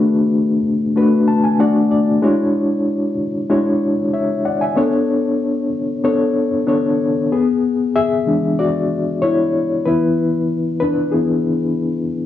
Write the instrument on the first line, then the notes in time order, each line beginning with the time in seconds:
reed electric piano
Already playing: A3 D4 F#4 G#4 B4
0.96 A3 D4 F#4 B4
1.28 A5
1.44 G#5
1.59 A3 D4 F#4 D5 F#5
1.91 D5
2.22 G#3 D4 E4 F#4 C#5
3.50 G#3 D4 E4 F#4 C#5
4.13 C#5 E5
4.45 D5 F#5
4.61 E5 G#5
4.76 B3 D4 A4 C#5
6.04 B3 D4 A4 C#5
6.67 B3 D4 A4 C#5
7.32 B3 G#4
7.96 G#4 E5
8.26 E3 G#3 D4
8.59 F#4 D5
9.22 E4 C#5
9.85 E3 B3 E4 B4
10.80 D4 B4
11.12 E3 B3 E4 G#4